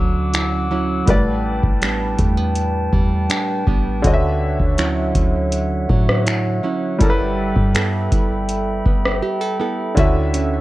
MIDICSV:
0, 0, Header, 1, 6, 480
1, 0, Start_track
1, 0, Key_signature, 2, "major"
1, 0, Tempo, 740741
1, 699, Time_signature, 4, 2, 24, 8
1, 6875, End_track
2, 0, Start_track
2, 0, Title_t, "Glass harmonica"
2, 0, Program_c, 0, 92
2, 0, Note_on_c, 0, 61, 69
2, 0, Note_on_c, 0, 78, 63
2, 0, Note_on_c, 0, 86, 65
2, 0, Note_on_c, 0, 88, 72
2, 678, Note_off_c, 0, 61, 0
2, 678, Note_off_c, 0, 78, 0
2, 678, Note_off_c, 0, 86, 0
2, 678, Note_off_c, 0, 88, 0
2, 698, Note_on_c, 0, 71, 68
2, 698, Note_on_c, 0, 79, 62
2, 698, Note_on_c, 0, 81, 64
2, 2599, Note_off_c, 0, 71, 0
2, 2599, Note_off_c, 0, 79, 0
2, 2599, Note_off_c, 0, 81, 0
2, 2619, Note_on_c, 0, 73, 68
2, 2619, Note_on_c, 0, 76, 62
2, 2619, Note_on_c, 0, 78, 65
2, 4519, Note_off_c, 0, 73, 0
2, 4520, Note_off_c, 0, 78, 0
2, 4542, Note_on_c, 0, 69, 70
2, 4542, Note_on_c, 0, 79, 65
2, 4542, Note_on_c, 0, 83, 74
2, 6433, Note_off_c, 0, 76, 0
2, 6441, Note_off_c, 0, 69, 0
2, 6441, Note_off_c, 0, 79, 0
2, 6441, Note_off_c, 0, 83, 0
2, 6458, Note_on_c, 0, 78, 66
2, 6459, Note_on_c, 0, 61, 70
2, 6459, Note_on_c, 0, 76, 61
2, 6875, Note_off_c, 0, 61, 0
2, 6875, Note_off_c, 0, 76, 0
2, 6875, Note_off_c, 0, 78, 0
2, 6875, End_track
3, 0, Start_track
3, 0, Title_t, "Grand piano"
3, 0, Program_c, 1, 0
3, 0, Control_c, 1, 64, 127
3, 0, Note_on_c, 1, 50, 72
3, 0, Note_on_c, 1, 61, 65
3, 0, Note_on_c, 1, 66, 65
3, 0, Note_on_c, 1, 76, 80
3, 665, Note_off_c, 1, 50, 0
3, 670, Note_off_c, 1, 61, 0
3, 680, Note_off_c, 1, 76, 0
3, 684, Note_on_c, 1, 45, 70
3, 695, Note_on_c, 1, 55, 68
3, 696, Note_off_c, 1, 66, 0
3, 704, Note_on_c, 1, 71, 67
3, 706, Control_c, 1, 64, 0
3, 714, Note_on_c, 1, 74, 80
3, 825, Control_c, 1, 64, 127
3, 2585, Note_off_c, 1, 45, 0
3, 2591, Note_off_c, 1, 55, 0
3, 2595, Note_off_c, 1, 71, 0
3, 2600, Note_off_c, 1, 74, 0
3, 2606, Note_on_c, 1, 50, 80
3, 2616, Note_on_c, 1, 61, 70
3, 2625, Note_on_c, 1, 66, 70
3, 2628, Control_c, 1, 64, 0
3, 2635, Note_on_c, 1, 75, 66
3, 2669, Note_off_c, 1, 75, 0
3, 2678, Note_on_c, 1, 76, 85
3, 2748, Control_c, 1, 64, 127
3, 4506, Note_off_c, 1, 50, 0
3, 4511, Note_off_c, 1, 61, 0
3, 4516, Note_off_c, 1, 66, 0
3, 4526, Note_on_c, 1, 55, 75
3, 4536, Note_on_c, 1, 64, 69
3, 4542, Note_off_c, 1, 76, 0
3, 4546, Note_on_c, 1, 69, 72
3, 4548, Control_c, 1, 64, 0
3, 4556, Note_on_c, 1, 70, 63
3, 4589, Note_off_c, 1, 70, 0
3, 4598, Note_on_c, 1, 71, 89
3, 4673, Control_c, 1, 64, 127
3, 6426, Note_off_c, 1, 55, 0
3, 6431, Note_off_c, 1, 64, 0
3, 6436, Note_off_c, 1, 69, 0
3, 6446, Note_on_c, 1, 50, 73
3, 6455, Note_on_c, 1, 61, 70
3, 6462, Note_off_c, 1, 71, 0
3, 6465, Note_on_c, 1, 66, 68
3, 6467, Control_c, 1, 64, 0
3, 6476, Note_on_c, 1, 76, 80
3, 6587, Control_c, 1, 64, 127
3, 6875, Note_off_c, 1, 50, 0
3, 6875, Note_off_c, 1, 61, 0
3, 6875, Note_off_c, 1, 66, 0
3, 6875, Note_off_c, 1, 76, 0
3, 6875, End_track
4, 0, Start_track
4, 0, Title_t, "Nylon-string guitar"
4, 0, Program_c, 2, 24
4, 0, Note_on_c, 2, 50, 84
4, 0, Note_on_c, 2, 54, 60
4, 0, Note_on_c, 2, 61, 49
4, 0, Note_on_c, 2, 64, 67
4, 216, Note_off_c, 2, 64, 0
4, 218, Note_on_c, 2, 64, 67
4, 451, Note_off_c, 2, 54, 0
4, 455, Note_off_c, 2, 61, 0
4, 459, Note_on_c, 2, 54, 61
4, 462, Note_on_c, 2, 61, 57
4, 464, Note_off_c, 2, 64, 0
4, 466, Note_on_c, 2, 64, 66
4, 698, Note_on_c, 2, 45, 85
4, 747, Note_off_c, 2, 54, 0
4, 748, Note_off_c, 2, 61, 0
4, 1045, Note_off_c, 2, 50, 0
4, 1178, Note_on_c, 2, 55, 61
4, 1182, Note_on_c, 2, 59, 62
4, 1184, Note_off_c, 2, 64, 0
4, 1186, Note_on_c, 2, 62, 67
4, 1416, Note_off_c, 2, 59, 0
4, 1418, Note_on_c, 2, 57, 61
4, 1538, Note_off_c, 2, 57, 0
4, 1538, Note_on_c, 2, 59, 54
4, 1891, Note_off_c, 2, 55, 0
4, 1899, Note_on_c, 2, 55, 64
4, 2135, Note_off_c, 2, 62, 0
4, 2138, Note_on_c, 2, 62, 67
4, 2370, Note_off_c, 2, 55, 0
4, 2374, Note_off_c, 2, 59, 0
4, 2378, Note_on_c, 2, 55, 62
4, 2382, Note_on_c, 2, 59, 60
4, 2383, Note_off_c, 2, 62, 0
4, 2386, Note_on_c, 2, 62, 67
4, 2617, Note_on_c, 2, 50, 84
4, 2618, Note_off_c, 2, 45, 0
4, 2666, Note_off_c, 2, 55, 0
4, 2668, Note_off_c, 2, 59, 0
4, 3097, Note_on_c, 2, 54, 60
4, 3102, Note_on_c, 2, 61, 60
4, 3103, Note_off_c, 2, 62, 0
4, 3105, Note_on_c, 2, 64, 68
4, 3331, Note_off_c, 2, 61, 0
4, 3338, Note_on_c, 2, 61, 60
4, 3811, Note_off_c, 2, 54, 0
4, 3819, Note_on_c, 2, 54, 64
4, 4055, Note_off_c, 2, 64, 0
4, 4058, Note_on_c, 2, 64, 73
4, 4290, Note_off_c, 2, 54, 0
4, 4294, Note_off_c, 2, 61, 0
4, 4298, Note_on_c, 2, 54, 62
4, 4302, Note_on_c, 2, 61, 63
4, 4303, Note_off_c, 2, 64, 0
4, 4306, Note_on_c, 2, 64, 69
4, 4534, Note_off_c, 2, 54, 0
4, 4537, Note_on_c, 2, 55, 85
4, 4588, Note_off_c, 2, 61, 0
4, 4885, Note_off_c, 2, 50, 0
4, 5020, Note_on_c, 2, 59, 62
4, 5021, Note_off_c, 2, 64, 0
4, 5024, Note_on_c, 2, 64, 62
4, 5027, Note_on_c, 2, 69, 71
4, 5256, Note_off_c, 2, 64, 0
4, 5259, Note_on_c, 2, 64, 61
4, 5732, Note_off_c, 2, 59, 0
4, 5740, Note_on_c, 2, 59, 66
4, 5975, Note_off_c, 2, 69, 0
4, 5978, Note_on_c, 2, 67, 72
4, 6098, Note_off_c, 2, 67, 0
4, 6098, Note_on_c, 2, 69, 58
4, 6210, Note_off_c, 2, 59, 0
4, 6218, Note_off_c, 2, 64, 0
4, 6218, Note_off_c, 2, 69, 0
4, 6218, Note_on_c, 2, 59, 61
4, 6221, Note_on_c, 2, 64, 61
4, 6226, Note_on_c, 2, 69, 68
4, 6458, Note_off_c, 2, 55, 0
4, 6460, Note_on_c, 2, 50, 85
4, 6461, Note_off_c, 2, 64, 0
4, 6463, Note_on_c, 2, 64, 75
4, 6506, Note_off_c, 2, 59, 0
4, 6700, Note_on_c, 2, 61, 59
4, 6875, Note_off_c, 2, 50, 0
4, 6875, Note_off_c, 2, 61, 0
4, 6875, Note_off_c, 2, 64, 0
4, 6875, Note_off_c, 2, 69, 0
4, 6875, End_track
5, 0, Start_track
5, 0, Title_t, "808-style bass"
5, 0, Program_c, 3, 38
5, 0, Note_on_c, 3, 38, 102
5, 673, Note_off_c, 3, 38, 0
5, 698, Note_on_c, 3, 33, 109
5, 1044, Note_off_c, 3, 33, 0
5, 1059, Note_on_c, 3, 33, 95
5, 1404, Note_off_c, 3, 33, 0
5, 1419, Note_on_c, 3, 40, 100
5, 1880, Note_off_c, 3, 40, 0
5, 1899, Note_on_c, 3, 40, 97
5, 2129, Note_off_c, 3, 40, 0
5, 2381, Note_on_c, 3, 33, 105
5, 2610, Note_off_c, 3, 33, 0
5, 2621, Note_on_c, 3, 38, 110
5, 2965, Note_off_c, 3, 38, 0
5, 2980, Note_on_c, 3, 38, 92
5, 3325, Note_off_c, 3, 38, 0
5, 3340, Note_on_c, 3, 38, 97
5, 3800, Note_off_c, 3, 38, 0
5, 3822, Note_on_c, 3, 45, 102
5, 4281, Note_off_c, 3, 45, 0
5, 4541, Note_on_c, 3, 31, 110
5, 4886, Note_off_c, 3, 31, 0
5, 4901, Note_on_c, 3, 43, 95
5, 5245, Note_off_c, 3, 43, 0
5, 5262, Note_on_c, 3, 31, 103
5, 5721, Note_off_c, 3, 31, 0
5, 5742, Note_on_c, 3, 31, 106
5, 5970, Note_off_c, 3, 31, 0
5, 6462, Note_on_c, 3, 38, 116
5, 6875, Note_off_c, 3, 38, 0
5, 6875, End_track
6, 0, Start_track
6, 0, Title_t, "Drums"
6, 217, Note_on_c, 9, 42, 66
6, 226, Note_on_c, 9, 26, 107
6, 282, Note_off_c, 9, 42, 0
6, 290, Note_off_c, 9, 26, 0
6, 696, Note_on_c, 9, 42, 69
6, 697, Note_on_c, 9, 36, 114
6, 761, Note_off_c, 9, 42, 0
6, 762, Note_off_c, 9, 36, 0
6, 1057, Note_on_c, 9, 36, 86
6, 1122, Note_off_c, 9, 36, 0
6, 1177, Note_on_c, 9, 42, 64
6, 1185, Note_on_c, 9, 26, 111
6, 1242, Note_off_c, 9, 42, 0
6, 1249, Note_off_c, 9, 26, 0
6, 1417, Note_on_c, 9, 36, 87
6, 1417, Note_on_c, 9, 42, 55
6, 1481, Note_off_c, 9, 42, 0
6, 1482, Note_off_c, 9, 36, 0
6, 1656, Note_on_c, 9, 42, 68
6, 1721, Note_off_c, 9, 42, 0
6, 1898, Note_on_c, 9, 36, 87
6, 1963, Note_off_c, 9, 36, 0
6, 2138, Note_on_c, 9, 42, 71
6, 2146, Note_on_c, 9, 26, 106
6, 2203, Note_off_c, 9, 42, 0
6, 2211, Note_off_c, 9, 26, 0
6, 2378, Note_on_c, 9, 36, 95
6, 2443, Note_off_c, 9, 36, 0
6, 2618, Note_on_c, 9, 36, 114
6, 2618, Note_on_c, 9, 42, 71
6, 2683, Note_off_c, 9, 36, 0
6, 2683, Note_off_c, 9, 42, 0
6, 2979, Note_on_c, 9, 36, 82
6, 3043, Note_off_c, 9, 36, 0
6, 3099, Note_on_c, 9, 42, 64
6, 3106, Note_on_c, 9, 26, 116
6, 3164, Note_off_c, 9, 42, 0
6, 3171, Note_off_c, 9, 26, 0
6, 3339, Note_on_c, 9, 36, 94
6, 3339, Note_on_c, 9, 42, 57
6, 3403, Note_off_c, 9, 36, 0
6, 3403, Note_off_c, 9, 42, 0
6, 3577, Note_on_c, 9, 42, 73
6, 3642, Note_off_c, 9, 42, 0
6, 3819, Note_on_c, 9, 36, 94
6, 3884, Note_off_c, 9, 36, 0
6, 3947, Note_on_c, 9, 37, 84
6, 4012, Note_off_c, 9, 37, 0
6, 4061, Note_on_c, 9, 42, 70
6, 4069, Note_on_c, 9, 26, 107
6, 4126, Note_off_c, 9, 42, 0
6, 4134, Note_off_c, 9, 26, 0
6, 4539, Note_on_c, 9, 36, 117
6, 4539, Note_on_c, 9, 42, 71
6, 4604, Note_off_c, 9, 36, 0
6, 4604, Note_off_c, 9, 42, 0
6, 4899, Note_on_c, 9, 36, 92
6, 4964, Note_off_c, 9, 36, 0
6, 5020, Note_on_c, 9, 42, 65
6, 5027, Note_on_c, 9, 26, 111
6, 5085, Note_off_c, 9, 42, 0
6, 5092, Note_off_c, 9, 26, 0
6, 5260, Note_on_c, 9, 36, 88
6, 5260, Note_on_c, 9, 42, 59
6, 5324, Note_off_c, 9, 36, 0
6, 5325, Note_off_c, 9, 42, 0
6, 5499, Note_on_c, 9, 42, 68
6, 5564, Note_off_c, 9, 42, 0
6, 5740, Note_on_c, 9, 36, 90
6, 5805, Note_off_c, 9, 36, 0
6, 5868, Note_on_c, 9, 37, 82
6, 5933, Note_off_c, 9, 37, 0
6, 6460, Note_on_c, 9, 36, 116
6, 6460, Note_on_c, 9, 42, 70
6, 6525, Note_off_c, 9, 36, 0
6, 6525, Note_off_c, 9, 42, 0
6, 6700, Note_on_c, 9, 42, 74
6, 6765, Note_off_c, 9, 42, 0
6, 6875, End_track
0, 0, End_of_file